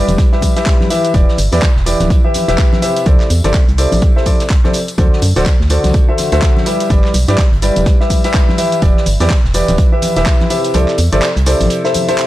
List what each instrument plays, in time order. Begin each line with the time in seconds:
Already playing: upright piano G3 E4 G4 B4 D5
0.08 fm bass E1, closed hi-hat, tambourine, high conga, shaker
0.18 kick, snare, closed hi-hat, tambourine, shaker
0.32 upright piano G3 E4 G4 B4 E5, snare
0.41 kick, closed hi-hat, open hi-hat, tambourine, high conga, shaker
0.56 upright piano G3 E4 G4 B4 E5, snare, closed hi-hat, tambourine, shaker
0.66 kick, snare, clap, closed hi-hat, tambourine, shaker
0.81 snare, high conga
0.90 upright piano E3 E4 G4 B4 E5, closed hi-hat, open hi-hat, tambourine, shaker
1.05 closed hi-hat, tambourine, shaker
1.14 fm bass E1, upright piano E3 E4 G4 B4 D5, kick, closed hi-hat, tambourine, high conga, shaker
1.28 snare
1.38 fm bass G1, closed hi-hat, open hi-hat, tambourine, shaker
1.52 fm bass E2, upright piano E3 E4 G4 B4 D5, snare, open hi-hat, tambourine, high conga, shaker
1.62 kick, snare, clap, closed hi-hat, tambourine, shaker
1.76 fm bass E1, snare
1.86 upright piano E3 E4 G4 B4 D5, closed hi-hat, open hi-hat, tambourine, shaker
2.00 fm bass D1, snare, closed hi-hat, tambourine, high conga, shaker
2.10 kick, closed hi-hat, tambourine, shaker
2.24 upright piano E3 E4 G4 B4 E5
2.34 snare, closed hi-hat, open hi-hat, tambourine, high conga, shaker
2.48 fm bass E1, upright piano E3 E4 G4 B4 E5, snare, closed hi-hat, tambourine, shaker
2.58 kick, snare, clap, closed hi-hat, tambourine, shaker
2.73 snare, high conga
2.82 upright piano C3 E4 G4 B4 E5, closed hi-hat, open hi-hat, tambourine, shaker
2.96 closed hi-hat, tambourine, shaker
3.06 fm bass C2, upright piano C3 E4 A4 C5 D5, kick, closed hi-hat, tambourine, high conga, shaker
3.20 snare, clap, shaker
3.30 fm bass E2, closed hi-hat, open hi-hat, tambourine, shaker
3.44 fm bass G1, upright piano C3 E4 A4 C5 D5, snare, closed hi-hat, tambourine, high conga, shaker
3.54 kick, snare, clap, closed hi-hat, tambourine, shaker
3.68 fm bass C2, closed hi-hat, shaker
3.78 upright piano C3 E4 A4 C5 D5, closed hi-hat, open hi-hat, tambourine, shaker
3.92 fm bass A1, closed hi-hat, open hi-hat, tambourine, high conga, shaker
4.02 kick, closed hi-hat, tambourine, shaker
4.16 upright piano C3 E4 A4 C5 E5, snare
4.26 upright piano C3 E4 A4 C5 D5, kick, closed hi-hat, open hi-hat, tambourine, high conga, shaker
4.40 snare, closed hi-hat, tambourine, shaker
4.50 kick, snare, clap, closed hi-hat, tambourine, shaker
4.64 upright piano C3 E4 A4 C5 D5, snare, high conga
4.74 closed hi-hat, open hi-hat, tambourine, shaker
4.88 closed hi-hat, tambourine, shaker
4.98 fm bass D2, upright piano D3 F#4 A4 C5 D5, kick, closed hi-hat, tambourine, high conga, shaker
5.13 snare
5.22 fm bass F#2, closed hi-hat, open hi-hat, tambourine, shaker
5.36 fm bass D1, upright piano D3 F#4 A4 C5 D5, snare, open hi-hat, tambourine, high conga, shaker
5.46 kick, snare, clap, closed hi-hat, tambourine, shaker
5.60 fm bass D2, snare
5.70 upright piano D3 F#4 A4 C5 D5, closed hi-hat, open hi-hat, tambourine, shaker
5.84 fm bass C2, snare, closed hi-hat, tambourine, high conga, shaker
5.94 kick, closed hi-hat, tambourine, shaker
6.08 upright piano D3 F#4 A4 C5 E5
6.18 snare, closed hi-hat, open hi-hat, tambourine, high conga, shaker
6.32 fm bass D2, upright piano D3 F#4 A4 C5 E5, snare, closed hi-hat, tambourine, shaker
6.42 kick, snare, clap, closed hi-hat, tambourine, shaker
6.57 snare, high conga
6.66 upright piano G3 E4 G4 B4 E5, closed hi-hat, open hi-hat, tambourine, shaker
6.80 closed hi-hat, tambourine, shaker
6.90 fm bass G1, upright piano G3 E4 G4 B4 D5, kick, closed hi-hat, tambourine, high conga, shaker
7.04 snare, clap
7.14 fm bass B1, closed hi-hat, open hi-hat, tambourine, shaker
7.28 fm bass G2, upright piano G3 E4 G4 B4 D5, snare, closed hi-hat, tambourine, high conga, shaker
7.38 kick, snare, clap, closed hi-hat, tambourine, shaker
7.52 fm bass G1, closed hi-hat
7.62 upright piano G3 E4 G4 B4 D5, closed hi-hat, open hi-hat, tambourine, shaker
7.76 fm bass E1, closed hi-hat, tambourine, high conga, shaker
7.86 kick, snare, closed hi-hat, tambourine, shaker
8.00 upright piano G3 E4 G4 B4 E5, snare
8.10 kick, closed hi-hat, open hi-hat, tambourine, high conga, shaker
8.24 upright piano G3 E4 G4 B4 E5, snare, closed hi-hat, tambourine, shaker
8.34 kick, snare, clap, closed hi-hat, tambourine, shaker
8.49 snare, high conga
8.58 upright piano E3 E4 G4 B4 E5, closed hi-hat, open hi-hat, tambourine, shaker
8.72 closed hi-hat, tambourine, shaker
8.82 fm bass E1, upright piano E3 E4 G4 B4 D5, kick, closed hi-hat, tambourine, high conga, shaker
8.97 snare
9.06 fm bass G1, closed hi-hat, open hi-hat, tambourine, shaker
9.20 fm bass E2, upright piano E3 E4 G4 B4 D5, snare, open hi-hat, tambourine, high conga, shaker
9.30 kick, snare, clap, closed hi-hat, tambourine, shaker
9.44 fm bass E1, snare
9.54 upright piano E3 E4 G4 B4 D5, closed hi-hat, open hi-hat, tambourine, shaker
9.68 fm bass D1, snare, closed hi-hat, tambourine, high conga, shaker
9.78 kick, closed hi-hat, tambourine, shaker
9.92 upright piano E3 E4 G4 B4 E5
10.02 snare, closed hi-hat, open hi-hat, tambourine, high conga, shaker
10.16 fm bass E1, upright piano E3 E4 G4 B4 E5, snare, closed hi-hat, tambourine, shaker
10.26 kick, snare, clap, closed hi-hat, tambourine, shaker
10.40 snare, high conga
10.50 upright piano C3 E4 G4 B4 E5, closed hi-hat, open hi-hat, tambourine, shaker
10.64 closed hi-hat, tambourine, shaker
10.74 fm bass C2, upright piano C3 E4 A4 C5 D5, closed hi-hat, tambourine, high conga, shaker
10.88 snare, clap, shaker
10.98 fm bass E2, closed hi-hat, open hi-hat, tambourine, shaker
11.12 fm bass G1, upright piano C3 E4 A4 C5 D5, snare, closed hi-hat, tambourine, high conga, shaker
11.22 snare, clap, closed hi-hat, tambourine, shaker
11.37 fm bass C2, closed hi-hat, shaker
11.46 upright piano C3 E4 A4 C5 D5, closed hi-hat, open hi-hat, tambourine, shaker
11.60 fm bass A1, closed hi-hat, open hi-hat, tambourine, high conga, shaker
11.70 closed hi-hat, tambourine, shaker
11.85 upright piano C3 E4 A4 C5 E5, snare, shaker
11.94 closed hi-hat, open hi-hat, tambourine, high conga, shaker
12.08 upright piano C3 E4 A4 C5 E5, snare, closed hi-hat, tambourine, shaker
12.18 clap, closed hi-hat, tambourine, shaker